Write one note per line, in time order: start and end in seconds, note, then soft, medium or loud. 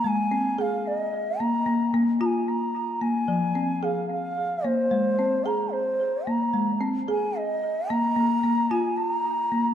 0.04 1.64 G#3 medium
0.04 0.62 G#5 medium
0.31 0.58 C4 medium
0.58 1.13 G#4 medium
0.58 0.89 F5 medium
0.87 1.42 D#5 medium
1.40 1.65 A#3 medium
1.40 1.94 A#5 medium
1.66 1.93 A#3 medium
1.94 2.21 A#3 medium
2.21 2.75 F4 medium
2.21 2.27 A#5 medium
2.26 2.50 G#5 medium
2.49 3.04 A#5 medium
3.01 3.29 A#3 medium
3.01 3.86 G#5 medium
3.28 4.88 F3 medium
3.55 3.83 C4 medium
3.83 4.37 G#4 medium
3.83 4.10 F5 medium
4.11 4.67 F5 medium
4.64 4.92 A#3 medium
4.64 5.47 C5 medium
4.91 6.50 G#3 medium
5.19 5.46 C4 medium
5.45 6.00 G#4 medium
5.45 5.74 A#5 medium
5.73 6.30 C5 medium
6.27 6.54 A#3 medium
6.27 6.82 A#5 medium
6.54 8.13 G#3 medium
6.81 7.08 C4 medium
7.08 7.62 G#4 medium
7.08 7.40 G#5 medium
7.38 7.93 D#5 medium
7.90 8.15 A#3 medium
7.90 8.72 A#5 loud
8.16 8.42 A#3 medium
8.44 8.70 A#3 medium
8.71 9.25 F4 medium
8.71 8.98 G#5 medium
8.97 9.10 A5 medium
9.10 9.74 A#5 medium
9.52 9.74 A#3 medium